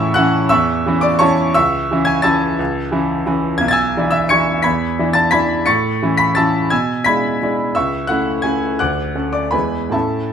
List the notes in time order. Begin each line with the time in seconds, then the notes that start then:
Already playing: A2 E3 C#4 E4 C#5 E5 A5 C#6 E6
0.14 E3 C#4 E4 F#5 F#6
0.49 E2 E5 C#6 E6
0.86 E3 C#4 E4
1.01 D5 D6
1.19 E3 C#4 E4 C#5 A5 C#6
1.54 C#2 E5 C#6 E6
1.91 E3 C#4 E4
2.05 G#5 G#6
2.22 E3 C#4 E4 A5 E6 A6
2.59 C#2
2.92 E3 C#4 E4
3.26 E3 C#4 E4
3.58 B1 G#6
3.68 G#6 A6
3.72 G#5 E6
3.97 E3 D4 E4
4.11 E5 E6
4.29 E3 D4 E4 C#6 G#6 C#7
4.62 E2 B5 G#6 B6
4.99 E3 D4 E4
5.13 A5 A6
5.31 E3 D4 E4 B5 G#6 B6
5.66 A2 C#6 A6 C#7
6.03 E3 C#4 E4
6.17 B5 B6
6.35 E3 C#4 E4 A5 E6 A6
6.70 B2 G#5 E6 G#6
7.04 G#3 D4 E4 B5 G#6 B6
7.43 G#3 D4 E4
7.75 C#2 E5 C#6 E6
8.07 A3 C#4 E4 F#5 F#6
8.42 A3 C#4 E4 G#5 G#6
8.79 D2 F#5 D6 F#6
9.15 A3 C#4 A4
9.33 D5 D6
9.51 E2 G#3 B3 E4 B4 G#5 B5
9.90 A2 A3 C#4 E4 E5 A5
9.94 A4